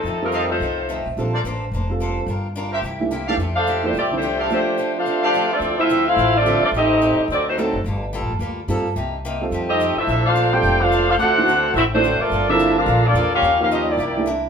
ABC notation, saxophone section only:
X:1
M:4/4
L:1/16
Q:"Swing" 1/4=215
K:Cmix
V:1 name="Saxophone section"
[F,C_EA]2 [F,CEB]4 [A,EFc]8 z2 | z16 | z16 | z2 [DAcf]4 [A,DGc]2 [CGAd]2 [A,DGc]4 [G,CDA]2 |
[A,DGc]6 [DAcf]4 [A,DGc]4 [CFAd]2- | [K:Dm] [CFAd]2 [CFAe]4 [CEAf]4 [CFAd]4 [CFAd]2 | [CGA_e]8 [C^FAd]2 [A,_EFc]2 [^F,CEA]3 z | z16 |
z8 z2 [CGA_e]4 [DAc=e]2- | [DAce]2 [DAcf]4 [Fcdg]4 [DAcf]4 [DAcf]2 | [DAc^f]8 [C^FAe]2 [A,DFc]4 [B,=FAd]2- | [B,FAd]2 [DABe]4 [DABf]4 [B,FAd]4 [^CGBf]2- |
[^CGBf]2 [_DGBf]2 [DGB_e]2 [B,=EG=d]6 z4 |]